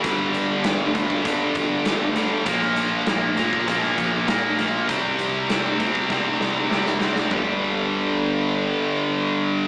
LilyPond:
<<
  \new Staff \with { instrumentName = "Distorted electric guitar" } { \clef bass \time 4/4 \key g \minor \tempo 4 = 99 <g, d g>4 <g, d g>8 <g, d g>8 <g, d g>4 <g, d g>8 <g, d g>8 | <bes, f bes>4 <bes, f bes>8 <bes, f bes>8 <bes, f bes>4 <bes, f bes>8 <bes, f bes>8 | <c g c'>4 <c g c'>8 <c g c'>8 <c g c'>4 <c g c'>8 <c g c'>8 | <g, d g>1 | }
  \new Staff \with { instrumentName = "Distorted electric guitar" } { \clef bass \time 4/4 \key g \minor <g, d g>4 <g, d g>8 <g, d g>8 <g, d g>4 <g, d g>8 <g, d g>8 | <bes, f bes>4 <bes, f bes>8 <bes, f bes>8 <bes, f bes>4 <bes, f bes>8 <bes, f bes>8 | <c g c'>4 <c g c'>8 <c g c'>8 <c g c'>4 <c g c'>8 <c g c'>8 | <g, d g>1 | }
  \new Staff \with { instrumentName = "Picked electric bass" } { \clef bass \time 4/4 \key g \minor g,,8 g,,8 g,,8 g,,8 g,,8 g,,8 g,,8 g,,8 | bes,,4 bes,,8 bes,8 bes,,8 bes,,8 bes,8 bes,,8 | c,8 c,8 c,8 c,8 c,8 c,8 c,8 c,8 | g,,1 | }
  \new DrumStaff \with { instrumentName = "Drums" } \drummode { \time 4/4 <hh bd>8 hh8 <hh sn>8 <hh bd>16 bd16 <hh bd>8 <hh bd>8 <hh sn>8 hh8 | <hh bd>16 sn16 hh8 <hh sn>8 <hh bd>16 bd16 <hh bd>16 sn16 <hh bd>8 <hh sn>8 hh8 | <hh bd>8 hh8 <hh sn>8 <hh bd>16 bd16 <bd sn>8 sn8 sn16 sn16 sn16 sn16 | <bd tomfh>4 r4 r4 r4 | }
>>